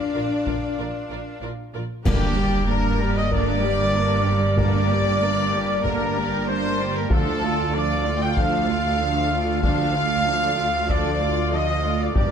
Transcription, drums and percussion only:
0.47 taiko
2.06 concert bass drum, taiko, crash
3.32 taiko
4.58 taiko
5.84 taiko
7.10 taiko
8.37 taiko
9.63 taiko
10.89 taiko
12.16 taiko

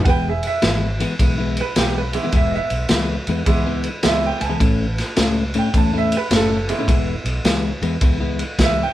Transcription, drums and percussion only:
0.05 kick, ride
0.43 ride
0.62 snare, ride
1.00 ride
1.19 kick, ride
1.57 ride
1.76 snare, ride
2.13 ride
2.32 kick, ride
2.70 ride
2.89 snare, ride
3.27 ride
3.46 kick, ride
3.84 ride
4.03 snare, ride
4.41 ride
4.60 kick, ride
4.98 snare, ride
5.16 snare, ride
5.54 ride
5.74 kick, ride
6.12 ride
6.31 snare, ride
6.69 ride
6.88 kick, ride
7.26 ride
7.45 snare, ride
7.82 ride
8.01 kick, ride
8.39 ride
8.59 kick, snare, ride

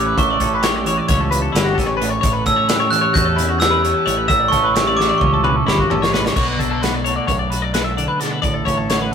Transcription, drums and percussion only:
0.18 kick, closed hi-hat
0.40 kick, closed hi-hat
0.63 snare, closed hi-hat
0.86 closed hi-hat
1.08 kick, snare, closed hi-hat
1.32 closed hi-hat
1.55 snare, closed hi-hat
1.78 kick, snare, closed hi-hat
2.02 closed hi-hat
2.23 kick, closed hi-hat
2.46 kick, closed hi-hat
2.69 snare, closed hi-hat
2.92 closed hi-hat
3.15 kick, closed hi-hat
3.38 closed hi-hat
3.61 snare, closed hi-hat
3.85 closed hi-hat
4.07 closed hi-hat
4.30 kick, closed hi-hat
4.53 kick, closed hi-hat
4.76 snare, closed hi-hat
5.00 snare
5.21 kick, high tom
5.44 mid tom
5.68 snare
5.79 kick
5.91 mid tom
6.03 snare
6.14 snare
6.26 snare
6.36 kick, crash
6.59 kick, closed hi-hat
6.83 snare, closed hi-hat
7.06 closed hi-hat
7.28 kick, closed hi-hat
7.52 closed hi-hat
7.74 snare, closed hi-hat
7.98 closed hi-hat
8.21 snare, closed hi-hat
8.43 kick, closed hi-hat
8.67 kick, closed hi-hat
8.90 snare, closed hi-hat

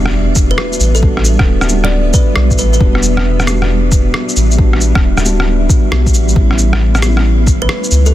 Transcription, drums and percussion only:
0.06 cross-stick
0.35 kick, shaker
0.58 cross-stick
0.73 shaker
0.80 shaker
0.95 shaker
1.03 kick
1.17 cross-stick
1.24 shaker
1.39 kick, cross-stick
1.61 cross-stick, shaker
1.69 shaker
1.84 cross-stick
2.13 kick, shaker
2.36 cross-stick
2.51 kick, shaker
2.58 shaker
2.73 shaker
2.81 kick
2.95 cross-stick
3.03 shaker
3.17 cross-stick
3.40 cross-stick, shaker
3.47 cross-stick, shaker
3.62 cross-stick
3.92 kick, shaker
4.14 cross-stick
4.29 shaker
4.36 shaker
4.51 shaker
4.58 kick
4.73 cross-stick
4.81 shaker
4.95 kick, cross-stick
5.17 cross-stick, shaker
5.25 shaker
5.40 cross-stick
5.69 kick, shaker
5.92 cross-stick
6.06 kick, shaker
6.14 shaker
6.28 shaker
6.36 kick
6.51 cross-stick
6.58 shaker
6.73 cross-stick
6.95 cross-stick, shaker
7.02 cross-stick, shaker
7.17 cross-stick
7.47 kick, shaker
7.69 cross-stick
7.84 shaker
7.91 shaker
8.06 shaker

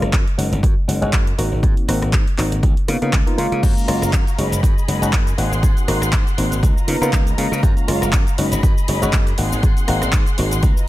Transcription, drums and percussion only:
0.02 cross-stick, closed hi-hat
0.13 kick, clap, closed hi-hat
0.28 closed hi-hat
0.39 open hi-hat
0.53 closed hi-hat
0.63 kick, closed hi-hat
0.89 open hi-hat
1.02 closed hi-hat
1.13 kick, clap, closed hi-hat
1.27 closed hi-hat
1.39 open hi-hat
1.63 kick, closed hi-hat
1.77 closed hi-hat
1.89 cross-stick, open hi-hat
2.02 cross-stick, closed hi-hat
2.13 kick, clap, closed hi-hat
2.28 closed hi-hat
2.38 clap, open hi-hat
2.52 closed hi-hat
2.63 kick, closed hi-hat
2.77 closed hi-hat
2.88 cross-stick, open hi-hat
3.02 closed hi-hat
3.13 kick, clap, closed hi-hat
3.27 closed hi-hat
3.38 open hi-hat
3.52 closed hi-hat
3.63 kick, closed hi-hat, crash, shaker
3.77 closed hi-hat, shaker
3.88 cross-stick, open hi-hat
4.02 cross-stick, closed hi-hat, shaker
4.13 kick, clap, closed hi-hat, shaker
4.27 closed hi-hat, shaker
4.39 open hi-hat
4.52 closed hi-hat, shaker
4.63 kick, closed hi-hat, shaker
4.78 shaker
4.88 open hi-hat
5.02 closed hi-hat, shaker
5.13 kick, clap, closed hi-hat, shaker
5.27 closed hi-hat, shaker
5.38 open hi-hat
5.53 shaker
5.63 kick, closed hi-hat, shaker
5.77 closed hi-hat, shaker
5.88 cross-stick, open hi-hat
6.02 cross-stick, closed hi-hat, shaker
6.13 kick, clap, closed hi-hat, shaker
6.27 closed hi-hat, shaker
6.38 open hi-hat
6.52 closed hi-hat, shaker
6.63 kick, closed hi-hat, shaker
6.78 shaker
6.88 open hi-hat
7.02 closed hi-hat, shaker
7.13 kick, clap, closed hi-hat, shaker
7.27 closed hi-hat, shaker
7.38 open hi-hat
7.53 shaker
7.63 kick, closed hi-hat, shaker
7.77 closed hi-hat, shaker
7.88 cross-stick, open hi-hat
8.02 cross-stick, closed hi-hat, shaker
8.13 kick, clap, closed hi-hat, shaker
8.27 closed hi-hat, shaker
8.38 open hi-hat
8.52 closed hi-hat, shaker
8.63 kick, closed hi-hat, shaker
8.78 shaker
8.88 open hi-hat
9.02 closed hi-hat, shaker
9.13 kick, clap, closed hi-hat, shaker
9.27 closed hi-hat, shaker
9.38 open hi-hat
9.53 shaker
9.63 kick, closed hi-hat, shaker
9.77 closed hi-hat, shaker
9.88 cross-stick, open hi-hat
10.02 cross-stick, closed hi-hat, shaker
10.13 kick, clap, closed hi-hat, shaker
10.26 closed hi-hat, shaker
10.38 open hi-hat
10.52 closed hi-hat, shaker
10.63 kick, closed hi-hat, shaker
10.77 shaker

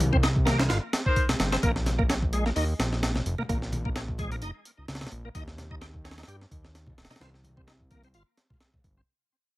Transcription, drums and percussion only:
0.00 closed hi-hat, high conga, low conga
0.13 kick
0.23 snare, closed hi-hat
0.36 kick
0.47 snare, closed hi-hat, high conga
0.60 snare, closed hi-hat
0.70 snare, closed hi-hat
0.93 snare, closed hi-hat
1.06 kick
1.16 kick, closed hi-hat
1.29 snare, closed hi-hat, low conga
1.40 snare, closed hi-hat
1.52 snare, closed hi-hat
1.63 kick, closed hi-hat, high conga
1.76 snare
1.86 snare, closed hi-hat, low conga
1.99 kick
2.10 snare, closed hi-hat
2.23 kick
2.33 closed hi-hat
2.46 snare
2.56 open hi-hat
2.80 snare, closed hi-hat
2.93 snare
3.03 snare, closed hi-hat
3.14 snare, low conga
3.26 closed hi-hat
3.38 low conga
3.49 kick, closed hi-hat, high conga
3.62 snare
3.72 closed hi-hat, high conga, low conga
3.85 kick
3.96 snare, closed hi-hat
4.09 kick
4.18 kick, closed hi-hat, high conga
4.32 closed hi-hat
4.42 closed hi-hat
4.65 closed hi-hat
4.88 snare, closed hi-hat
4.95 snare, closed hi-hat
5.01 snare, closed hi-hat, low conga
5.07 snare, closed hi-hat
5.12 closed hi-hat
5.35 kick, closed hi-hat, high conga
5.48 snare
5.58 snare, closed hi-hat, low conga
5.71 kick
5.82 snare, closed hi-hat
5.94 kick
6.05 snare, closed hi-hat
6.11 snare, closed hi-hat
6.18 snare, closed hi-hat
6.23 snare, closed hi-hat
6.28 closed hi-hat
6.41 snare
6.51 kick, closed hi-hat
6.64 snare
6.75 snare, closed hi-hat
6.86 kick, low conga
6.98 snare, closed hi-hat
7.05 snare, closed hi-hat
7.10 snare, closed hi-hat, low conga
7.16 snare, closed hi-hat
7.20 snare, closed hi-hat, high conga
7.34 snare
7.44 closed hi-hat, high conga, low conga
7.57 kick
7.68 snare, closed hi-hat
7.80 kick
7.91 kick, closed hi-hat, high conga
8.03 closed hi-hat
8.14 closed hi-hat
8.37 snare, closed hi-hat
8.50 kick, low conga
8.60 snare, closed hi-hat
8.74 kick, low conga
8.84 kick, closed hi-hat

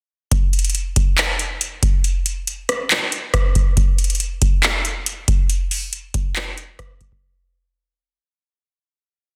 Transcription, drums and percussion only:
0.32 kick, closed hi-hat
0.53 closed hi-hat
0.59 closed hi-hat
0.65 closed hi-hat
0.70 closed hi-hat
0.75 closed hi-hat
0.96 kick, closed hi-hat
1.18 clap, closed hi-hat
1.39 closed hi-hat
1.61 closed hi-hat
1.83 kick, closed hi-hat
2.04 closed hi-hat
2.26 closed hi-hat
2.47 closed hi-hat
2.69 cross-stick, closed hi-hat
2.90 clap, closed hi-hat
3.12 closed hi-hat
3.34 kick, cross-stick, closed hi-hat
3.55 kick, closed hi-hat
3.77 kick, closed hi-hat
3.98 closed hi-hat
4.04 closed hi-hat
4.10 closed hi-hat
4.15 closed hi-hat
4.20 closed hi-hat
4.42 kick, closed hi-hat
4.63 clap, closed hi-hat
4.85 closed hi-hat
5.06 closed hi-hat
5.28 kick, closed hi-hat
5.50 closed hi-hat
5.71 open hi-hat
5.93 closed hi-hat
6.14 kick, closed hi-hat
6.36 clap, closed hi-hat
6.58 closed hi-hat
6.79 kick, cross-stick, closed hi-hat
7.01 kick, closed hi-hat
7.12 kick

